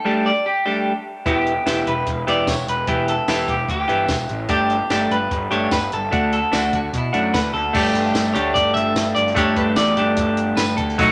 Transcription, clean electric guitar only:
0.00 0.26 A4 medium
0.26 0.46 D5 medium
0.46 1.02 G4 medium
1.27 1.89 G4 medium
1.88 2.29 B4 medium
2.29 2.49 D5 medium
2.49 2.67 C#5 medium
2.69 3.09 B4 medium
3.09 3.49 A4 medium
3.49 3.69 G4 medium
3.70 4.10 G4 medium
4.10 4.26 F#4 medium
4.51 5.11 G4 medium
5.12 5.51 B4 medium
5.52 5.72 C#5 medium
5.72 5.93 B4 medium
5.93 6.32 A4 medium
6.33 6.74 A4 medium
6.75 6.95 F#4 medium
6.98 7.52 E4 medium
7.34 7.53 B4 medium
7.54 8.31 A4 medium
8.34 8.54 C#5 medium
8.54 8.73 D5 loud
8.74 9.14 E5 loud
9.15 9.34 D5 medium
9.38 9.58 C#5 loud
9.57 9.75 B4 medium
9.76 10.60 D5 loud
10.57 10.76 B4 medium
10.77 11.12 A4 medium

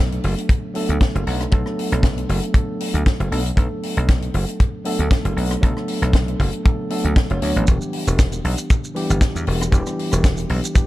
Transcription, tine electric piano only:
0.00 0.72 F#3 medium
0.00 0.72 A3 medium
0.00 0.73 B3 medium
0.00 0.73 D4 medium
0.00 0.73 A4 medium
0.74 1.49 F#3 medium
0.74 1.49 A3 medium
0.74 1.49 B3 medium
0.74 1.50 D4 medium
0.74 1.50 A4 medium
1.51 2.52 F#3 medium
1.51 2.52 A3 medium
1.51 2.52 B3 medium
1.51 2.52 D4 medium
1.51 2.52 A4 loud
2.54 3.28 F#3 medium
2.54 3.29 A3 medium
2.54 3.29 B3 medium
2.54 3.29 D4 medium
2.54 3.29 A4 medium
3.31 3.39 F#3 medium
3.31 3.39 A3 medium
3.31 3.39 B3 medium
3.31 3.39 D4 medium
3.31 3.39 A4 medium
3.56 4.82 F#3 medium
3.56 4.82 A3 medium
3.56 4.83 B3 medium
3.56 4.83 D4 medium
3.56 4.83 A4 medium
4.84 5.59 F#3 medium
4.84 5.59 A3 medium
4.84 5.60 B3 medium
4.84 5.60 D4 medium
4.84 5.60 A4 loud
5.62 6.62 F#3 medium
5.62 6.62 A3 medium
5.62 6.62 B3 medium
5.62 6.63 D4 medium
5.62 6.63 A4 loud
6.64 6.88 F#3 medium
6.64 6.88 A3 medium
6.64 6.88 B3 medium
6.64 6.88 D4 medium
6.64 6.89 A4 medium
6.90 7.27 F#3 medium
6.90 7.27 A3 medium
6.90 7.27 B3 medium
6.90 7.27 D4 medium
6.90 7.27 A4 medium
7.30 7.39 F#3 medium
7.30 7.39 A3 medium
7.30 7.39 B3 medium
7.30 7.39 D4 medium
7.30 7.40 C#5 medium
7.42 7.65 F#3 medium
7.42 7.65 A3 medium
7.42 7.65 B3 medium
7.42 7.65 D4 medium
7.42 7.65 C#5 medium
7.66 8.92 E3 medium
7.66 8.93 G3 medium
7.66 8.93 B3 medium
7.66 8.93 D4 medium
7.66 8.93 G4 medium
8.95 9.69 E3 medium
8.95 9.70 G3 medium
8.95 9.70 B3 medium
8.95 9.70 D4 medium
8.95 9.70 G4 loud
9.72 10.72 E3 medium
9.72 10.72 G3 medium
9.72 10.73 B3 medium
9.72 10.73 D4 medium
9.72 10.73 G4 loud
10.74 10.87 E3 medium
10.74 10.87 G3 medium
10.74 10.87 B3 medium
10.74 10.87 D4 medium
10.74 10.87 G4 medium

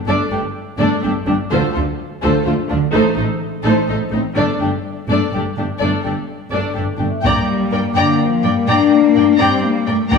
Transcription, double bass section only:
0.07 0.15 G1 soft
0.32 0.40 G1 soft
0.80 0.88 G1 medium
1.04 1.12 G1 soft
1.27 1.35 G1 soft
1.52 1.60 D2 medium
1.76 1.84 D2 soft
2.23 2.31 D2 medium
2.46 2.54 D2 soft
2.71 2.79 D2 soft
2.94 3.02 A1 medium
3.17 3.25 A1 soft
3.64 3.72 A1 medium
3.89 3.97 A1 soft
4.12 4.20 A1 soft
4.36 4.44 G1 medium
4.61 4.69 G1 soft
5.09 5.17 G1 soft
5.33 5.41 G1 soft
5.57 5.65 G1 soft
5.81 5.89 G1 soft
6.06 6.14 G1 soft
6.51 6.59 G1 soft
6.76 6.84 G1 soft
6.98 7.06 G1 soft
7.22 7.30 G2 soft
7.71 7.79 G2 soft
7.94 8.02 G2 soft
8.43 8.51 G2 soft
8.67 8.75 G2 soft
9.14 9.22 G2 soft
9.39 9.47 G2 medium
9.88 9.96 G2 soft
10.11 10.18 G2 soft

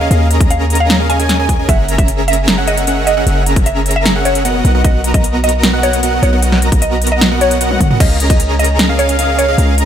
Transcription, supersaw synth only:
0.01 0.08 C#4 loud
0.01 0.08 G#4 loud
0.01 0.08 A#4 medium
0.01 0.08 D#5 medium
0.01 0.08 F5 loud
0.11 0.28 C#4 medium
0.11 0.28 G#4 medium
0.11 0.28 A#4 medium
0.11 0.28 D#5 medium
0.11 0.28 F5 medium
0.30 0.97 C#4 loud
0.30 0.97 G#4 medium
0.30 0.97 A#4 medium
0.30 0.97 D#5 medium
0.30 0.97 A#5 loud
1.00 1.08 C#4 medium
1.00 1.08 G#4 medium
1.00 1.08 A#4 medium
1.00 1.08 D#5 medium
1.00 1.08 F5 loud
1.09 1.18 C#4 medium
1.09 1.18 G#4 medium
1.09 1.18 A#4 medium
1.09 1.18 D#5 medium
1.09 1.18 F5 loud
1.19 1.37 C#4 medium
1.19 1.37 G#4 medium
1.19 1.37 A#4 medium
1.19 1.37 D#5 medium
1.19 1.37 G#5 loud
1.39 1.48 C#4 medium
1.39 1.48 G#4 medium
1.39 1.48 A#4 medium
1.39 1.48 D#5 medium
1.39 1.48 G#5 loud
1.49 1.57 C#4 medium
1.49 1.57 G#4 medium
1.49 1.57 A#4 medium
1.49 1.57 D#5 medium
1.49 1.57 G#5 loud
1.59 1.67 C#4 medium
1.59 1.67 G#4 medium
1.59 1.67 A#4 medium
1.59 1.67 D#5 medium
1.59 1.67 G#5 loud
1.69 1.86 C#4 medium
1.69 1.86 G#4 medium
1.69 1.86 A#4 medium
1.69 1.86 E5 medium
1.69 1.86 F#5 medium
1.89 2.55 C#4 loud
1.89 2.55 G#4 loud
1.89 2.55 A#4 medium
1.89 2.55 E5 loud
1.89 2.55 A#5 loud
2.58 2.85 C#4 medium
2.58 2.85 G#4 medium
2.58 2.85 A#4 medium
2.58 2.85 E5 medium
2.58 2.85 F#5 loud
2.87 3.15 C#4 loud
2.87 3.15 G#4 medium
2.87 3.15 A#4 medium
2.87 3.15 E5 medium
2.87 3.15 F#5 loud
3.17 3.24 C#4 loud
3.17 3.24 G#4 loud
3.17 3.24 A#4 medium
3.17 3.24 E5 medium
3.17 3.24 F#5 loud
3.27 3.44 C#4 medium
3.27 3.43 G#4 medium
3.27 3.43 A#4 medium
3.27 3.43 E5 medium
3.27 3.43 F#5 medium
3.46 4.13 C#4 loud
3.46 4.13 G#4 loud
3.46 4.13 A#4 loud
3.46 4.13 E5 loud
3.46 4.13 A#5 loud
4.15 4.43 C#4 medium
4.15 4.43 G#4 medium
4.15 4.43 A#4 medium
4.15 4.43 E5 medium
4.15 4.43 F#5 loud
4.45 4.72 B3 medium
4.45 4.72 F#4 medium
4.45 4.72 A#4 medium
4.45 4.72 D#5 medium
4.45 4.72 F#5 loud
4.75 4.82 B3 loud
4.75 4.82 F#4 medium
4.75 4.82 A#4 medium
4.75 4.82 D#5 loud
4.75 4.82 F#5 loud
4.84 5.01 B3 medium
4.84 5.01 F#4 medium
4.84 5.01 A#4 medium
4.84 5.01 D#5 medium
4.84 5.01 F#5 medium
5.04 5.71 B3 loud
5.04 5.71 F#4 medium
5.04 5.71 A#4 loud
5.04 5.71 D#5 loud
5.04 5.71 A#5 loud
5.73 6.01 B3 medium
5.73 6.01 F#4 medium
5.73 6.01 A#4 medium
5.73 6.01 D#5 medium
5.73 6.01 F#5 loud
6.03 6.30 B3 medium
6.03 6.30 F#4 medium
6.03 6.30 A#4 medium
6.03 6.30 D#5 medium
6.03 6.30 F#5 loud
6.33 6.40 B3 loud
6.33 6.40 F#4 medium
6.33 6.40 A#4 loud
6.33 6.40 D#5 medium
6.33 6.40 F#5 loud
6.42 6.59 B3 medium
6.42 6.59 F#4 medium
6.42 6.59 A#4 medium
6.42 6.59 D#5 medium
6.42 6.59 F#5 medium
6.62 7.29 B3 loud
6.62 7.29 F#4 loud
6.62 7.29 A#4 medium
6.62 7.29 D#5 medium
6.62 7.29 A#5 loud
7.31 7.58 B3 medium
7.31 7.58 F#4 medium
7.31 7.58 A#4 medium
7.31 7.58 D#5 medium
7.31 7.58 F#5 loud
7.61 7.88 B3 medium
7.61 7.88 F#4 medium
7.61 7.88 A#4 medium
7.61 7.88 D#5 medium
7.61 7.88 F#5 loud
7.90 7.98 B3 loud
7.90 7.98 F#4 medium
7.90 7.98 A#4 medium
7.90 7.98 D#5 medium
7.90 7.98 F#5 loud
8.00 8.17 C#4 medium
8.00 8.17 G#4 medium
8.00 8.17 A#4 medium
8.00 8.17 D#5 medium
8.00 8.17 F5 medium
8.20 8.87 C#4 loud
8.20 8.87 G#4 medium
8.20 8.87 A#4 medium
8.20 8.87 D#5 medium
8.20 8.87 A#5 loud
8.89 9.16 C#4 medium
8.89 9.16 G#4 medium
8.89 9.16 A#4 medium
8.89 9.16 D#5 medium
8.89 9.16 F5 loud
9.19 9.46 C#4 medium
9.19 9.46 G#4 medium
9.19 9.46 A#4 medium
9.19 9.46 D#5 medium
9.19 9.46 F5 loud
9.48 9.56 C#4 loud
9.48 9.56 G#4 loud
9.48 9.56 A#4 medium
9.48 9.56 D#5 medium
9.48 9.56 F5 loud
9.58 9.75 C#4 medium
9.58 9.75 G#4 medium
9.58 9.75 A#4 medium
9.58 9.75 D#5 medium
9.58 9.75 F5 medium
9.78 9.85 C#4 loud
9.78 9.85 G#4 loud
9.78 9.85 A#4 medium
9.78 9.85 D#5 loud
9.78 9.85 A#5 loud

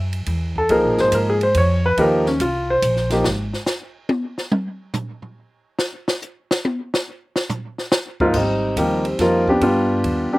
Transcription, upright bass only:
0.00 0.26 F#2 medium
0.27 0.68 E2 medium
0.69 0.84 C#2 medium
0.84 0.98 A#1 medium
0.98 1.12 G#1 medium
1.12 1.54 G#2 medium
1.55 1.96 F2 medium
1.97 2.39 D#2 medium
2.40 2.81 C2 medium
2.82 3.24 A#1 medium
3.24 3.52 G#1 medium
8.34 8.75 G#1 medium
8.76 9.18 D#2 medium
9.19 9.60 F2 medium
9.61 10.03 G2 medium
10.04 10.31 D#2 medium
10.33 muted upright bass stroke soft

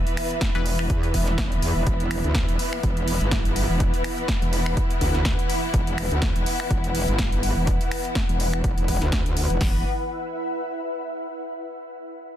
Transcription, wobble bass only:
0.55 0.88 E1 loud
0.90 1.12 E2 loud
1.14 1.61 E1 loud
1.62 1.74 E2 loud
1.76 1.85 E1 loud
1.87 2.22 E1 loud
2.24 2.46 D2 loud
2.49 2.58 E1 loud
2.83 3.19 E1 loud
3.21 3.67 G1 medium
3.69 3.92 E1 loud
4.42 4.75 E1 medium
5.01 5.37 D2 loud
5.74 6.09 E1 loud
6.11 6.34 D2 loud
6.36 6.45 E1 loud
6.71 7.06 E1 loud
7.08 7.54 G1 loud
7.57 7.79 E1 loud
8.29 8.62 E1 loud
8.64 8.75 E1 loud
8.78 9.00 E1 loud
9.02 9.48 D2 loud
9.50 9.59 E1 loud
9.61 9.83 E1 loud

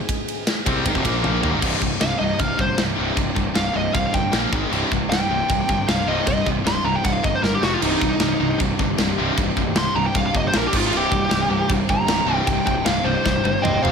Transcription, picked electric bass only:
0.67 0.85 C2 loud
0.86 0.94 G#1 medium
0.95 1.04 F1 medium
1.05 1.23 A#1 loud
1.25 1.42 A#1 medium
1.43 1.52 D#2 medium
1.53 1.62 G#1 medium
1.63 1.74 C1 loud
1.82 1.94 C1 medium
2.01 2.13 C1 medium
2.21 2.33 C1 medium
2.40 2.52 C1 medium
2.58 2.71 G1 medium
2.78 2.90 C1 medium
2.98 3.10 C1 medium
3.16 3.29 C1 medium
3.36 3.48 C1 medium
3.57 3.68 C1 medium
3.75 3.87 C1 medium
3.95 4.07 C1 medium
4.14 4.26 G1 medium
4.33 4.45 A#1 medium
4.52 4.64 G#1 medium
4.71 4.83 C1 loud
4.92 5.04 C1 medium
5.09 5.21 C1 medium
5.29 5.42 C1 medium
5.50 5.62 C1 loud
5.69 5.81 G1 medium
5.88 6.00 C1 medium
6.06 6.18 C1 medium
6.27 6.39 C1 loud
6.47 6.59 C1 medium
6.64 6.77 C1 medium
6.84 6.96 C1 medium
7.05 7.17 C1 medium
7.24 7.36 G1 medium
7.43 7.55 G1 medium
7.62 7.74 F1 medium
7.83 7.94 C1 loud
8.02 8.13 C1 medium
8.21 8.33 C1 loud
8.40 8.52 C1 medium
8.60 8.72 C1 medium
8.80 8.91 G1 medium
8.99 9.10 C1 medium
9.18 9.30 C1 medium
9.38 9.50 C1 loud
9.57 9.69 C1 medium
9.75 9.87 C1 medium
9.95 10.07 C1 medium
10.15 10.27 C1 loud
10.35 10.46 G1 loud
10.55 10.66 A#1 loud
10.73 10.92 G#1 medium
10.92 11.04 C1 loud
11.11 11.23 C1 loud
11.31 11.43 C1 medium
11.48 11.61 C1 medium
11.70 11.82 C1 medium
11.89 12.01 G1 medium
12.07 12.20 C1 loud
12.26 12.39 C1 medium
12.48 12.60 C1 loud
12.67 12.79 C1 loud
12.86 12.98 C1 medium
13.04 13.16 C1 medium
13.26 13.38 C1 loud
13.45 13.57 G1 medium
13.65 13.76 C1 medium
13.83 13.92 F1 medium

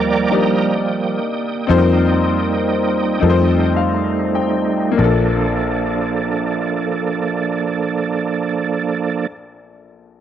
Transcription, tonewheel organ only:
0.00 0.77 F3 medium
0.00 0.78 G3 medium
0.00 1.67 A#3 medium
0.00 0.29 A#4 medium
0.00 0.29 D5 medium
0.00 0.33 G5 medium
0.00 0.74 A#5 medium
0.00 0.35 D6 loud
0.32 3.75 G5 medium
0.32 3.73 D#6 loud
0.78 1.19 F3 medium
0.78 1.20 G3 soft
1.72 3.19 G3 medium
1.72 3.19 A#3 medium
1.72 3.20 D#4 medium
3.21 4.94 G3 medium
3.21 4.94 A3 medium
3.21 4.95 D#4 medium
4.98 9.27 F3 medium
4.98 9.27 A#3 medium
4.98 9.26 D4 medium
4.98 9.27 A4 medium
4.98 9.27 D5 medium

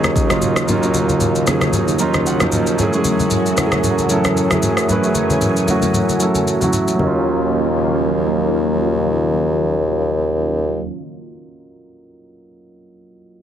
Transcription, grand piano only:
0.00 0.29 F#3 medium
0.00 0.30 A#3 medium
0.00 0.30 C#4 medium
0.00 0.31 D#4 medium
0.00 0.32 F4 medium
0.00 2.81 F#4 medium
0.00 0.22 G#4 medium
0.29 0.60 F#3 medium
0.29 0.61 A#3 medium
0.29 0.61 C#4 medium
0.29 0.62 D#4 medium
0.29 0.62 F4 loud
0.67 0.79 F#3 medium
0.67 0.79 A#3 medium
0.67 0.80 C#4 medium
0.67 0.80 D#4 medium
0.67 0.81 F4 medium
0.81 1.35 F#3 medium
0.81 1.35 A#3 medium
0.81 1.35 C#4 medium
0.81 1.36 D#4 medium
0.81 1.36 F4 medium
1.46 1.53 F3 medium
1.46 1.90 A#3 medium
1.46 1.90 C#4 medium
1.46 1.91 D#4 medium
1.46 1.91 G#4 medium
1.52 1.93 F#3 medium
1.99 2.31 F#3 medium
1.99 2.32 A#3 medium
1.99 2.32 C#4 medium
1.99 2.32 D#4 medium
1.99 2.33 F4 medium
1.99 2.24 A#5 medium
2.27 2.75 F#5 medium
2.40 2.73 F3 loud
2.40 2.71 F#3 medium
2.40 2.71 A#3 medium
2.40 2.72 C#4 medium
2.40 2.72 D#4 medium
2.78 2.90 F#3 medium
2.78 2.90 A3 medium
2.78 2.91 C#4 medium
2.78 2.91 E4 medium
2.78 2.91 G#4 medium
2.92 3.45 F#3 medium
2.92 2.99 G#3 medium
2.92 3.46 C#4 medium
2.92 3.47 E4 medium
2.92 3.47 G#4 medium
2.99 3.49 A3 medium
3.56 4.00 F#3 medium
3.56 4.01 A3 medium
3.56 4.01 C#4 medium
3.56 4.01 E4 medium
3.56 3.66 F#4 medium
3.66 4.05 G#4 loud
4.09 4.42 F#3 medium
4.09 4.42 A3 medium
4.09 4.43 C#4 medium
4.09 4.43 E4 medium
4.09 4.43 A4 medium
4.50 4.81 F#3 medium
4.50 4.82 A3 medium
4.50 4.82 C#4 medium
4.50 4.83 E4 medium
4.50 4.83 G#4 loud
4.88 5.00 F#3 medium
4.88 5.01 A3 medium
4.88 5.01 C#4 medium
4.88 5.01 E4 medium
4.88 5.02 B4 medium
5.03 5.56 F#3 medium
5.03 5.56 A3 medium
5.03 5.57 C#4 medium
5.03 5.57 E4 medium
5.03 5.57 G#4 medium
5.67 6.11 F#3 medium
5.67 6.11 A3 medium
5.67 6.12 C#4 medium
5.67 6.12 E4 medium
5.67 6.12 F#4 medium
6.20 6.52 F#3 medium
6.20 6.53 A3 medium
6.20 6.53 C#4 medium
6.20 6.53 E4 medium
6.20 6.54 A4 medium
6.60 6.92 F#3 medium
6.60 6.92 A3 medium
6.60 6.93 C#4 medium
6.60 6.93 E4 medium
6.60 6.94 F#4 medium
6.93 10.79 F#3 medium
6.93 10.82 A#3 medium
7.00 10.85 C#4 medium
7.00 10.89 D#4 medium
7.07 10.92 F4 medium

